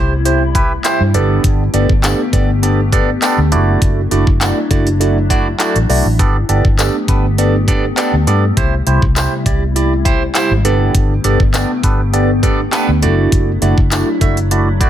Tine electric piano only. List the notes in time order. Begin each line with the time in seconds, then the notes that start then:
Already playing: E4 G4 C5
0.25 E4 G4 C5
0.55 E4 G4 B4
0.84 E4 G4 C5
1.14 B3 D4 G4 A4 D5
1.74 B3 D4 G4 A4 D5
2.03 B3 D4 G4 A4 D5
2.33 B3 D4 G4 A4 D5
2.63 B3 D4 G4 A4 D5
2.92 B3 D4 G4 A4 D5
3.22 B3 D4 G4 A4 D5
3.52 A3 D4 E4 F#4 D5
4.11 A3 D4 E4 F#4 D5
4.41 A3 D4 E4 F#4 D5
4.70 A3 D4 E4 F#4 D5
5.00 A3 D4 E4 F#4 D5
5.30 A3 D4 E4 F#4 D5
5.60 A3 D4 E4 F#4 D5
5.89 A3 D4 E4 F#4 D5
6.19 B3 D4 G4 A4 D5
6.49 B3 D4 G4 A4 D5
6.78 B3 D4 G4 A4 D5
7.08 B3 D4 G4 A4 B4
7.38 B3 D4 G4 A4 D5
7.68 B3 D4 G4 A4 D5
7.97 B3 D4 G4 A4 D5
8.27 B3 D4 G4 A4 D5
8.57 E4 G4 C5
8.87 E4 G4 C5
9.16 E4 G4 C5
9.46 E4 G4 D5
9.75 E4 G4 D5
10.05 E4 G4 C5
10.35 E4 G4 C5
10.65 B3 D4 G4 A4 D5
11.24 B3 D4 G4 A4 D5
11.54 B3 D4 G4 A4 D5
11.83 B3 D4 G4 A4 B4
12.13 B3 D4 G4 A4 D5
12.43 B3 D4 G4 A4 D5
12.73 B3 D4 G4 A4 B4
13.02 A3 D4 E4 F#4 D5
13.62 A3 D4 E4 F#4 D5
13.91 A3 D4 E4 F#4 D5
14.21 A3 D4 E4 F#4 E5
14.51 A3 D4 E4 F#4 D5
14.80 A3 D4 E4 F#4 D5